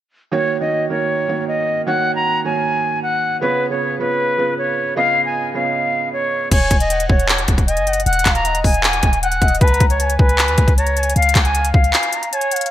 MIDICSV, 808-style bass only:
0, 0, Header, 1, 2, 480
1, 0, Start_track
1, 0, Key_signature, -6, "minor"
1, 0, Tempo, 387097
1, 398, Time_signature, 4, 2, 24, 8
1, 15759, End_track
2, 0, Start_track
2, 0, Title_t, "808-style bass"
2, 0, Program_c, 0, 38
2, 8078, Note_on_c, 0, 27, 109
2, 8309, Note_off_c, 0, 27, 0
2, 8318, Note_on_c, 0, 27, 103
2, 8779, Note_off_c, 0, 27, 0
2, 8798, Note_on_c, 0, 27, 102
2, 9259, Note_off_c, 0, 27, 0
2, 9278, Note_on_c, 0, 27, 103
2, 9637, Note_on_c, 0, 30, 102
2, 9656, Note_off_c, 0, 27, 0
2, 9980, Note_off_c, 0, 30, 0
2, 9997, Note_on_c, 0, 27, 107
2, 10228, Note_off_c, 0, 27, 0
2, 10237, Note_on_c, 0, 27, 103
2, 10698, Note_off_c, 0, 27, 0
2, 10717, Note_on_c, 0, 27, 105
2, 11179, Note_off_c, 0, 27, 0
2, 11197, Note_on_c, 0, 27, 102
2, 11659, Note_off_c, 0, 27, 0
2, 11676, Note_on_c, 0, 27, 103
2, 11908, Note_off_c, 0, 27, 0
2, 11918, Note_on_c, 0, 37, 108
2, 12148, Note_off_c, 0, 37, 0
2, 12158, Note_on_c, 0, 37, 105
2, 12619, Note_off_c, 0, 37, 0
2, 12638, Note_on_c, 0, 37, 104
2, 12998, Note_on_c, 0, 39, 104
2, 13017, Note_off_c, 0, 37, 0
2, 13112, Note_off_c, 0, 39, 0
2, 13118, Note_on_c, 0, 37, 101
2, 13231, Note_off_c, 0, 37, 0
2, 13238, Note_on_c, 0, 37, 104
2, 13814, Note_off_c, 0, 37, 0
2, 13839, Note_on_c, 0, 37, 111
2, 14069, Note_off_c, 0, 37, 0
2, 14078, Note_on_c, 0, 37, 106
2, 14539, Note_off_c, 0, 37, 0
2, 14558, Note_on_c, 0, 37, 105
2, 14788, Note_off_c, 0, 37, 0
2, 15759, End_track
0, 0, End_of_file